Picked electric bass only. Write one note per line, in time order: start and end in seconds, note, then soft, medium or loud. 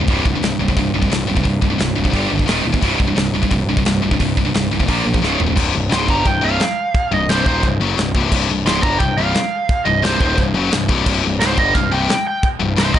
0.08 0.20 C1 medium
0.25 0.37 C1 medium
0.42 0.54 C1 medium
0.59 0.71 C1 medium
0.77 0.89 C1 medium
0.94 1.06 C1 medium
1.11 1.23 C1 medium
1.29 1.41 C1 medium
1.45 1.57 C1 medium
1.62 1.74 C1 medium
1.79 1.91 C1 medium
1.97 2.09 C1 medium
2.13 2.25 G1 medium
2.32 2.44 G1 medium
2.49 2.60 D#1 medium
2.65 2.77 D#1 medium
2.82 2.94 C1 medium
3.00 3.12 C1 medium
3.17 3.29 C1 medium
3.34 3.46 C1 medium
3.51 3.63 C1 medium
3.68 3.80 C1 medium
3.86 3.98 C1 medium
4.03 4.15 C1 medium
4.20 4.32 C1 medium
4.37 4.49 C1 medium
4.55 4.67 C1 medium
4.72 4.84 C1 medium
4.88 5.00 A#1 medium
5.06 5.18 A#1 medium
5.22 5.34 C#1 medium
5.40 5.52 C#1 medium
5.57 5.74 C1 medium
5.75 5.91 C1 medium
5.92 6.08 C#1 medium
6.09 6.25 G1 medium
6.26 6.42 C1 medium
6.43 6.59 C1 medium
7.12 7.28 C1 medium
7.29 7.45 C1 medium
7.46 7.62 D#1 loud
7.63 7.79 C1 medium
7.80 7.97 F#1 medium
7.98 8.14 C1 medium
8.15 8.31 C1 medium
8.32 8.48 C1 medium
8.49 8.65 C1 medium
8.66 8.83 C#1 loud
8.83 9.00 G1 medium
9.00 9.17 C1 medium
9.18 9.34 C1 loud
9.87 10.03 C1 medium
10.04 10.20 C1 medium
10.20 10.37 D#1 medium
10.38 10.54 C1 medium
10.55 10.71 F#1 medium
10.73 10.89 C1 medium
10.89 11.06 C1 medium
11.07 11.23 C1 medium
11.25 11.40 C1 medium
11.42 11.57 C#1 medium
11.58 11.74 G1 loud
11.75 11.91 C1 medium
11.92 12.08 C1 loud
12.60 12.77 C1 medium
12.77 12.94 C1 loud
12.94 12.99 D#1 loud